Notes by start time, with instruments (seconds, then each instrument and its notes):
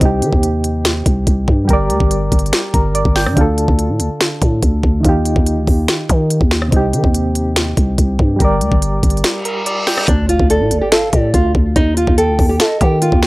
Already playing: synth keys C3
0.00 808-style bass C2, synth keys C4 D#4, kick, closed hi-hat
0.05 synth keys G4
0.22 808-style bass D#3, closed hi-hat
0.33 808-style bass D#2, kick
0.43 closed hi-hat
0.64 closed hi-hat
0.85 finger snap, snare, closed hi-hat
1.06 808-style bass C2, kick, closed hi-hat
1.27 808-style bass C2, kick, closed hi-hat
1.48 808-style bass G2, kick
1.65 synth keys G3 G4
1.69 808-style bass G1, synth keys A#4, kick, closed hi-hat
1.73 synth keys D5
1.90 808-style bass D2, closed hi-hat
2.00 808-style bass G1, kick
2.11 closed hi-hat
2.32 808-style bass G1, kick, closed hi-hat
2.39 closed hi-hat
2.46 closed hi-hat
2.53 finger snap, snare, closed hi-hat
2.74 808-style bass G1, synth keys A#4, kick, closed hi-hat
2.95 synth keys D5, closed hi-hat
3.05 808-style bass G1, kick
3.16 synth keys G5, finger snap, snare, open hi-hat
3.26 808-style bass G2, cross-stick
3.33 synth keys D3 D4
3.37 808-style bass D2, synth keys F4 A4, kick, closed hi-hat
3.58 closed hi-hat
3.68 808-style bass D2, kick
3.79 closed hi-hat
3.89 808-style bass A2
4.00 808-style bass D2, closed hi-hat
4.21 finger snap, snare, closed hi-hat
4.42 808-style bass A2, kick, closed hi-hat
4.62 808-style bass D2, kick, closed hi-hat
4.83 808-style bass D2, kick
5.00 synth keys D#3 D#4
5.05 808-style bass D#2, synth keys F4, kick, closed hi-hat
5.09 synth keys G4
5.25 closed hi-hat
5.36 808-style bass D#2, kick
5.46 closed hi-hat
5.57 808-style bass D2
5.67 808-style bass D#2, kick, open hi-hat
5.88 finger snap, snare, closed hi-hat
6.09 808-style bass D#3, kick, closed hi-hat
6.30 closed hi-hat
6.41 808-style bass D#2, kick
6.51 finger snap, snare
6.62 cross-stick
6.68 synth keys C3 C4
6.72 808-style bass C2, synth keys D#4, kick, closed hi-hat
6.76 synth keys G4
6.93 808-style bass D#3, closed hi-hat
7.04 808-style bass D#2, kick
7.14 closed hi-hat
7.35 closed hi-hat
7.56 finger snap, snare, closed hi-hat
7.77 808-style bass C2, kick, closed hi-hat
7.98 808-style bass C2, kick, closed hi-hat
8.19 808-style bass G2, kick
8.36 synth keys G3 G4
8.40 808-style bass G1, synth keys A#4, kick, closed hi-hat
8.44 synth keys D5
8.61 808-style bass D2, closed hi-hat
8.72 808-style bass G1, kick
8.82 closed hi-hat
9.03 808-style bass G1, kick, closed hi-hat
9.10 closed hi-hat
9.17 closed hi-hat
9.24 finger snap, snare, closed hi-hat, reverse cymbal
9.45 synth keys A#4, closed hi-hat
9.66 synth keys D5, closed hi-hat
9.87 synth keys G5, finger snap, snare, open hi-hat
9.98 cross-stick
10.08 808-style bass D2, nylon-string guitar D4, kick, closed hi-hat, impact
10.29 nylon-string guitar F4, closed hi-hat
10.39 808-style bass D2, kick
10.50 nylon-string guitar A4, soft synth lead D5, closed hi-hat
10.60 808-style bass A2
10.71 808-style bass D2, closed hi-hat
10.81 nylon-string guitar G4
10.92 nylon-string guitar A4, soft synth lead F5, finger snap, snare, closed hi-hat
11.13 808-style bass A2, nylon-string guitar G4, soft synth lead D5, kick, closed hi-hat
11.34 808-style bass D2, nylon-string guitar F4, kick, closed hi-hat
11.55 808-style bass D2, kick
11.76 808-style bass D#2, nylon-string guitar D#4, kick, closed hi-hat
11.97 nylon-string guitar F4, closed hi-hat
12.07 808-style bass D#2, kick
12.18 nylon-string guitar A4, soft synth lead G5, closed hi-hat
12.28 808-style bass D2
12.39 808-style bass D#2, kick, open hi-hat
12.49 nylon-string guitar G4
12.60 nylon-string guitar A4, soft synth lead D#5, finger snap, snare, closed hi-hat
12.81 808-style bass D#3, nylon-string guitar G4, soft synth lead G5, kick, closed hi-hat
13.02 nylon-string guitar F4, closed hi-hat
13.12 808-style bass D#2, kick
13.23 finger snap, snare